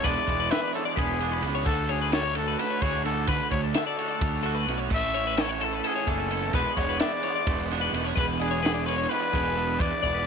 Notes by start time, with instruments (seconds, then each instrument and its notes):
0.03 fingered electric bass E1, clean electric guitar E2 E3 G#3 B3 D4 B4, overdriven electric guitar E3 B3 D4 G#4, trumpet D5, kick, ride
0.27 fingered electric bass E1, clean electric guitar B3 D5, overdriven electric guitar B3 D4 G#4, kick, ride
0.40 clean electric guitar B4
0.49 overdriven electric guitar E3 B3 D4 G#4, clean electric guitar E3 E5, trumpet B4, snare, ride
0.63 clean electric guitar D5
0.73 clean electric guitar G#3 C#5, trumpet A4, snare, ride
0.85 clean electric guitar D5
0.96 fingered electric bass E1, clean electric guitar B3 B4, trumpet G#4, kick, ride
1.18 clean electric guitar B2 D4 G#4, overdriven electric guitar B3 D4 G#4, ride
1.32 clean electric guitar B4
1.41 fingered electric bass C#2, overdriven electric guitar E3 B3 D4 G#4, ride
1.45 clean electric guitar B3
1.55 clean electric guitar C#5
1.65 fingered electric bass D2, clean electric guitar D2 D3 A4, overdriven electric guitar D3 A3 D4 F#4, trumpet A4, kick, ride
1.69 clean electric guitar F#3 C#4 F#4
1.88 overdriven electric guitar A3 D4 F#4, trumpet G#4, clean electric guitar C#5, ride
2.02 clean electric guitar B4
2.11 overdriven electric guitar D3 A3 D4 F#4, clean electric guitar D3 A4, trumpet C#5, snare, ride
2.24 clean electric guitar C#5
2.35 clean electric guitar F#3 A4, trumpet A4, snare, ride
2.48 clean electric guitar B4
2.59 clean electric guitar A4, trumpet B4, snare, ride
2.70 clean electric guitar C#5
2.81 fingered electric bass D2, clean electric guitar A2 F#4 G#4, overdriven electric guitar A3 D4 F#4, trumpet C#5, kick, ride
3.04 overdriven electric guitar D3 A3 D4 F#4, clean electric guitar C#4 A4, trumpet A4, snare, ride
3.27 clean electric guitar D2 B4, fingered electric bass D3, overdriven electric guitar D3 A3 D4, trumpet B4, kick, ride
3.32 overdriven electric guitar F#4
3.51 fingered electric bass D2, overdriven electric guitar A3 D4 F#4, trumpet C#5, clean electric guitar C#5, kick, ride
3.64 clean electric guitar A4
3.74 overdriven electric guitar D3 A3 D4 F#4, clean electric guitar D3 E5, trumpet A4, snare, ride
3.87 clean electric guitar D5
3.97 clean electric guitar F#3 C#5, ride
4.08 clean electric guitar D5
4.20 fingered electric bass D2, clean electric guitar C#5, kick, ride
4.43 clean electric guitar A2 F#4 A4, overdriven electric guitar A3 D4 F#4, ride
4.55 clean electric guitar B4
4.67 fingered electric bass B1, overdriven electric guitar D3 A3 D4 F#4, clean electric guitar C#4, snare, ride
4.78 clean electric guitar C#5
4.90 fingered electric bass A1, overdriven electric guitar A2 E3 A3 C#4, clean electric guitar A2 A4, kick, crash
4.94 overdriven electric guitar E4, trumpet E5
5.14 overdriven electric guitar A3 C#4 E4, clean electric guitar C#4 C#5, ride
5.27 clean electric guitar B4
5.37 overdriven electric guitar E3 A3 C#4 E4, clean electric guitar E3 A4, snare, ride
5.41 trumpet C#5
5.49 clean electric guitar C#5
5.60 clean electric guitar A3 A4, trumpet A4, ride
5.73 clean electric guitar B4
5.84 clean electric guitar C#4 A4, trumpet G#4, ride
5.96 clean electric guitar C#5
6.06 fingered electric bass F#1, clean electric guitar E2 D4 G#4, overdriven electric guitar A3 C#4 E4, trumpet A4, kick, ride
6.19 clean electric guitar E4
6.30 overdriven electric guitar A2 E3 A3 C#4 E4, clean electric guitar C#4 A4, ride
6.53 fingered electric bass E1, clean electric guitar E2 E3 G#3 B3 D4 B4, overdriven electric guitar E3 B3 D4 G#4, trumpet B4, kick, ride
6.75 fingered electric bass E1, overdriven electric guitar D4 G#4, trumpet C#5, clean electric guitar D5, kick, ride
6.80 overdriven electric guitar B3, clean electric guitar B3
6.89 clean electric guitar B4
6.99 overdriven electric guitar E3 B3 D4, clean electric guitar E3 E5, trumpet D5, snare, ride
7.03 overdriven electric guitar G#4
7.12 clean electric guitar D5
7.23 clean electric guitar C#5, ride
7.27 clean electric guitar G#3
7.35 clean electric guitar D5
7.47 fingered electric bass E1, clean electric guitar A3 B4, kick, ride
7.60 clean electric guitar B3
7.69 clean electric guitar B2 D4 G#4, overdriven electric guitar B3 D4 G#4, snare, ride
7.81 clean electric guitar B4
7.93 fingered electric bass E1, overdriven electric guitar E3 B3 D4 G#4, clean electric guitar A3, ride
8.05 clean electric guitar B3 C#5
8.15 fingered electric bass E1, overdriven electric guitar E3 B3 D4 G#4, clean electric guitar B4, trumpet B4, kick, ride
8.19 clean electric guitar E2
8.39 clean electric guitar B3 D5, overdriven electric guitar B3 D4 G#4, trumpet G#4, snare, ride
8.51 clean electric guitar C#5
8.62 overdriven electric guitar E3 B3 D4 G#4, clean electric guitar E3 B4, ride
8.66 snare
8.74 clean electric guitar D5
8.86 clean electric guitar G#3 B4, trumpet C#5, ride
8.98 clean electric guitar C#5
9.09 clean electric guitar A3 B4, trumpet B4, snare, ride
9.21 clean electric guitar B3 D5
9.32 fingered electric bass E1, clean electric guitar B2 D4 G#4, overdriven electric guitar B3 D4 G#4, kick, snare, ride
9.55 overdriven electric guitar E3 B3 D4 G#4, clean electric guitar B3 A4, ride
9.79 fingered electric bass E2, clean electric guitar E2 B4, overdriven electric guitar E3 B3 D4 G#4, trumpet D5, kick, ride
10.02 fingered electric bass E1, overdriven electric guitar B3 D4 G#4, clean electric guitar B3 D5, kick, ride
10.14 clean electric guitar B4